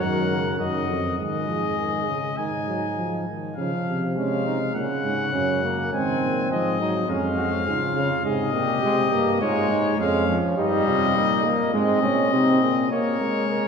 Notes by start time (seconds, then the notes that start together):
0.00 F#2 D#3 A#4 F#5
0.30 C#3
0.59 F#2 D#3 F#4 D#5
0.89 F2
1.18 G#2 D#3 G#4 D#5
1.48 F3
1.78 D#3
2.07 C#3
2.38 G#2 D#3 D#4 G#5
2.67 F#3
2.97 F3
3.28 D#3
3.56 C#3 F3 F5
3.87 C3
4.16 G#3 C#4 F5
4.46 D#4
4.74 A#2 C#3 C#4 F#5
5.04 G#2
5.33 F#2 C#4
5.64 A#3
5.92 G#2 D#3 C4 G#5
6.22 A#2
6.50 G#2 F3 D#5
6.80 F#3 D#4
7.08 F2 G#3 C#4 F5
7.37 F#4
7.66 G#2 C#3 F4
7.95 C#3
8.24 G#2 C3 G#4 D#5
8.53 A#2 G4
8.83 C3 G#3
9.12 G2 A#3
9.41 G#2 G#3 F4 C#5
9.70 G#2 D#4
9.98 F2 G#3 C#4 F5
10.28 F3
10.56 G2 G3 D#4 D#5
10.86 C3 F4
11.15 A#2 D#4
11.44 A#3
11.74 G#2 G#3 C4 D#5
12.03 A#2 C#4
12.32 C3 C4 D#4
12.62 A#2 G#4
12.91 A#3 A#4 C#5
13.21 G#3
13.51 A#4